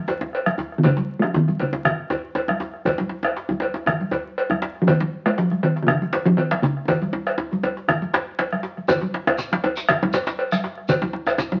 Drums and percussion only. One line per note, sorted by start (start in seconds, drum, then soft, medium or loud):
0.08 cowbell soft
0.08 djembe slap medium
0.08 djembe tone medium
0.21 bombo rim soft
0.21 djembe tone medium
0.33 bombo rim soft
0.33 cowbell soft
0.33 djembe slap soft
0.46 bombo rim medium
0.46 high conga medium
0.58 djembe slap medium
0.58 high conga soft
0.58 djembe bass medium
0.72 bombo rim soft
0.83 bombo low medium
0.83 cowbell medium
0.83 djembe tone medium
0.83 low conga medium
0.83 djembe bass medium
0.97 djembe slap medium
0.97 djembe tone medium
0.97 high conga medium
1.10 high conga soft
1.22 bombo rim medium
1.34 djembe slap medium
1.34 djembe bass medium
1.48 bombo rim soft
1.48 djembe tone medium
1.48 high conga medium
1.59 cowbell soft
1.59 djembe tone medium
1.73 bombo rim soft
1.73 djembe slap medium
1.73 djembe tone medium
1.85 bombo rim medium
1.85 bombo low loud
1.85 djembe slap soft
1.85 djembe bass medium
1.85 low conga medium
1.99 djembe slap soft
2.10 cowbell soft
2.10 djembe slap medium
2.10 djembe tone medium
2.10 djembe bass medium
2.24 djembe slap soft
2.35 cowbell soft
2.35 djembe tone medium
2.48 bombo rim medium
2.48 djembe tone medium
2.48 high conga soft
2.60 bombo rim soft
2.60 djembe slap medium
2.60 djembe tone medium
2.74 bombo rim soft
2.85 bombo low loud
2.85 cowbell medium
2.85 djembe tone medium
2.85 djembe bass medium
2.85 low conga medium
2.98 djembe slap medium
2.98 djembe tone medium
2.98 high conga soft
3.09 djembe tone medium
3.09 high conga soft
3.23 bombo rim medium
3.23 cowbell soft
3.23 djembe tone medium
3.37 djembe slap medium
3.49 bombo rim soft
3.49 djembe tone soft
3.49 high conga soft
3.49 djembe bass medium
3.60 cowbell medium
3.60 djembe tone medium
3.60 high conga soft
3.74 bombo rim soft
3.74 djembe slap medium
3.74 djembe tone medium
3.86 bombo rim medium
3.86 bombo low medium
3.86 djembe slap soft
3.86 djembe tone medium
3.86 djembe bass medium
3.86 low conga medium
4.01 djembe slap soft
4.01 high conga soft
4.11 cowbell medium
4.11 djembe slap medium
4.11 djembe bass medium
4.26 djembe slap soft
4.38 cowbell medium
4.50 bombo rim medium
4.50 high conga soft
4.50 djembe bass medium
4.62 bombo rim soft
4.62 djembe slap medium
4.75 bombo rim soft
4.87 bombo low medium
4.87 cowbell medium
4.87 djembe tone medium
4.87 djembe bass medium
4.87 low conga medium
5.00 djembe slap medium
5.00 high conga soft
5.13 high conga soft
5.26 bombo rim medium
5.26 cowbell soft
5.38 djembe slap medium
5.51 bombo rim soft
5.51 high conga medium
5.63 cowbell soft
5.63 high conga soft
5.76 bombo rim soft
5.76 djembe slap medium
5.88 bombo rim medium
5.88 bombo low medium
5.88 djembe slap soft
5.88 low conga medium
5.88 djembe bass medium
6.02 djembe slap soft
6.02 high conga medium
6.13 cowbell soft
6.13 djembe slap medium
6.13 djembe tone medium
6.26 djembe slap soft
6.26 djembe tone medium
6.38 cowbell soft
6.51 bombo rim medium
6.51 djembe slap medium
6.51 high conga medium
6.63 bombo rim soft
6.63 djembe slap medium
6.63 djembe tone medium
6.77 bombo rim soft
6.88 bombo rim soft
6.88 bombo low medium
6.88 cowbell medium
6.88 djembe tone loud
6.88 djembe tone medium
6.88 low conga medium
6.88 djembe bass medium
7.02 bombo rim soft
7.02 djembe slap soft
7.02 high conga medium
7.13 djembe tone medium
7.26 bombo rim medium
7.26 cowbell soft
7.26 djembe slap soft
7.38 djembe slap medium
7.38 djembe tone loud
7.52 djembe tone soft
7.52 high conga medium
7.63 cowbell soft
7.63 djembe tone medium
7.63 high conga soft
7.77 djembe slap soft
7.88 bombo rim medium
7.88 bombo low medium
7.88 djembe tone medium
7.88 high conga soft
7.88 djembe bass medium
7.88 low conga medium
8.02 djembe slap soft
8.02 high conga medium
8.14 cowbell soft
8.14 djembe slap medium
8.14 djembe slap loud
8.14 djembe tone medium
8.39 cowbell soft
8.39 djembe slap medium
8.39 high conga soft
8.52 bombo rim medium
8.52 djembe slap soft
8.52 high conga soft
8.63 bombo rim soft
8.63 djembe slap medium
8.77 bombo rim soft
8.77 high conga soft
8.88 bombo low loud
8.88 cowbell medium
8.88 djembe tone medium
8.88 djembe tone loud
8.88 djembe bass medium
8.88 low conga medium
8.88 shekere medium
9.01 djembe slap medium
9.01 high conga medium
9.14 djembe slap medium
9.14 high conga soft
9.27 bombo rim medium
9.27 cowbell medium
9.27 djembe tone loud
9.38 djembe slap medium
9.38 shekere medium
9.52 bombo rim soft
9.52 djembe slap medium
9.52 djembe tone medium
9.52 high conga medium
9.64 cowbell medium
9.64 djembe tone loud
9.64 high conga soft
9.76 bombo rim soft
9.76 djembe slap medium
9.76 shekere soft
9.88 bombo rim loud
9.88 bombo low medium
9.88 djembe slap soft
9.88 djembe slap medium
9.88 low conga medium
9.88 djembe bass medium
9.88 shekere soft
10.03 high conga medium
10.03 djembe tone loud
10.13 cowbell medium
10.13 djembe slap medium
10.13 djembe tone medium
10.13 shekere medium
10.27 djembe slap medium
10.27 djembe slap soft
10.27 shekere soft
10.39 cowbell soft
10.52 bombo rim medium
10.52 high conga medium
10.52 shekere soft
10.64 bombo rim soft
10.64 djembe slap medium
10.78 bombo rim soft
10.88 bombo low loud
10.88 cowbell medium
10.88 djembe tone medium
10.88 low conga medium
10.88 djembe bass medium
10.88 shekere medium
11.02 djembe slap medium
11.02 djembe tone loud
11.02 high conga medium
11.13 djembe tone medium
11.13 high conga soft
11.27 bombo rim medium
11.27 cowbell medium
11.27 djembe tone medium
11.27 shekere soft
11.38 djembe slap medium
11.38 djembe tone loud
11.38 shekere soft
11.52 bombo rim soft
11.52 djembe tone medium
11.52 high conga medium
11.52 djembe tone medium